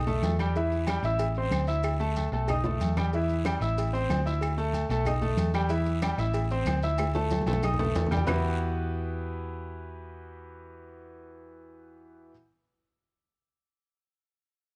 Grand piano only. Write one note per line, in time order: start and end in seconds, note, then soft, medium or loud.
0.07 0.34 A3 medium
0.07 0.34 A4 medium
0.07 0.34 A5 medium
0.40 0.53 G3 medium
0.40 0.53 G4 medium
0.40 0.53 G5 medium
0.57 0.83 E3 medium
0.57 0.83 E4 medium
0.57 0.83 E5 medium
0.89 1.02 G3 medium
0.89 1.02 G4 medium
0.89 1.02 G5 medium
1.05 1.31 E4 medium
1.05 1.31 E5 medium
1.05 1.31 E6 medium
1.38 1.64 C4 medium
1.38 1.64 C5 medium
1.38 1.64 C6 medium
1.68 1.94 E4 medium
1.68 1.95 E5 medium
1.68 1.95 E6 medium
2.00 2.27 A3 medium
2.00 2.27 A4 medium
2.00 2.27 A5 medium
2.33 2.46 A3 medium
2.33 2.46 A4 medium
2.33 2.47 A5 medium
2.49 2.62 D#4 medium
2.49 2.63 D#5 medium
2.49 2.63 D#6 medium
2.65 2.92 A3 medium
2.65 2.92 A4 medium
2.65 2.92 A5 medium
2.97 3.10 G3 medium
2.97 3.11 G4 medium
2.97 3.11 G5 medium
3.14 3.41 E3 medium
3.14 3.40 E4 medium
3.14 3.41 E5 medium
3.45 3.58 G3 medium
3.45 3.59 G4 medium
3.45 3.59 G5 medium
3.62 3.88 E4 medium
3.62 3.88 E5 medium
3.62 3.88 E6 medium
3.93 4.20 C4 medium
3.93 4.20 C5 medium
3.93 4.20 C6 medium
4.26 4.52 E4 medium
4.26 4.53 E5 medium
4.26 4.53 E6 medium
4.58 4.84 A3 medium
4.58 4.84 A4 medium
4.58 4.85 A5 medium
4.91 5.04 A3 medium
4.91 5.04 A4 medium
4.91 5.04 A5 medium
5.07 5.20 D#4 medium
5.07 5.20 D#5 medium
5.07 5.20 D#6 medium
5.22 5.49 A3 medium
5.22 5.49 A4 medium
5.22 5.49 A5 medium
5.54 5.68 G3 medium
5.54 5.68 G4 medium
5.54 5.68 G5 medium
5.70 5.96 E3 medium
5.70 5.97 E4 medium
5.70 5.97 E5 medium
6.02 6.16 G3 medium
6.02 6.16 G4 medium
6.02 6.16 G5 medium
6.19 6.45 E4 medium
6.19 6.45 E5 medium
6.19 6.46 E6 medium
6.51 6.78 C4 medium
6.51 6.78 C5 medium
6.51 6.78 C6 medium
6.83 7.10 E4 medium
6.83 7.10 E5 medium
6.83 7.10 E6 medium
7.15 7.41 A3 medium
7.15 7.41 A4 medium
7.15 7.42 A5 medium
7.47 7.61 A3 medium
7.47 7.61 A4 medium
7.47 7.61 A5 medium
7.64 7.77 D#4 medium
7.64 7.77 D#5 medium
7.64 7.77 D#6 medium
7.79 8.06 A3 medium
7.79 8.06 A4 medium
7.79 8.06 A5 medium
8.11 8.25 G3 medium
8.11 8.25 G4 medium
8.11 8.25 G5 medium
8.27 12.31 E3 medium
8.27 12.31 B3 medium
8.27 12.31 E4 medium
8.27 12.31 F#4 medium
8.27 12.31 G4 medium
8.27 12.31 B4 loud